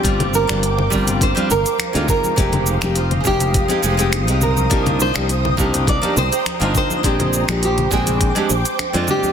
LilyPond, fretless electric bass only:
\new Staff \with { instrumentName = "Fretless electric bass" } { \clef bass \time 4/4 \key c \minor \tempo 4 = 103 g,,8. g,,8. g,,8. r16 g,,16 r8 d,16 r8 | f,,8. f,,8. f,,8. r16 f,,8. c,8. | c,8. c,8. c,8. r16 c,16 r8 g,,16 r8 | bes,,8. bes,,8. bes,,8. r16 bes,,16 r8 f,16 r8 | }